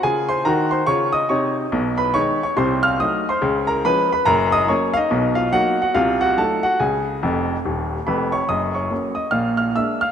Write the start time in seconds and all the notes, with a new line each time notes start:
0.03 C#3 F4 G#4 G#5
0.29 C5 C6
0.45 D#3 F#4 A#4 A#5
0.71 C5 C6
0.87 C#3 F4 C#5 C#6
1.13 D#5 D#6
1.29 C3 D#4 C#5 C#6
1.72 B1 B2
1.98 B4 B5
2.14 D#3 G#3 D#4 C#5 C#6
2.43 C#5 C#6
2.57 C2 C3 C5 C6
2.83 F5 F6
3.00 F#3 A3 D#4 D#5 D#6
3.29 C5 C6
3.42 C#2 C#3
3.67 A#4 A#5
3.85 F3 G#3 C#4 B4 B5
4.13 B4 B5
4.25 F#1 F#2 A#4 A#5
4.52 D#5 D#6
4.68 F#3 A#3 C#4 C#5 C#6
4.94 D#5 F5
4.98 D#4
5.11 B1 B2
5.35 F4 F5
5.53 F#3 A#3 D#4 F#4 F#5
5.82 F#4 F#5
5.95 C2 C3 F4 F5
6.21 F#4 F#5
6.38 F#3 A3 D#4 A4 A5
6.63 F#4 F#5
6.80 C#2 C#3 G#4 G#5
7.23 F1 F2
7.65 D#1 D#2
8.07 F1 F2 B4 B5
8.32 C#5 C#6
8.49 F#1 F#2 D#5 D#6
8.75 C#5 C#6
8.91 F#3 A#3 C#4
9.15 D#5 D#6
9.31 A#1 A#2 F5 F6
9.57 F5 F6
9.76 G#3 A#3 D4 E5 E6
10.01 F5 F6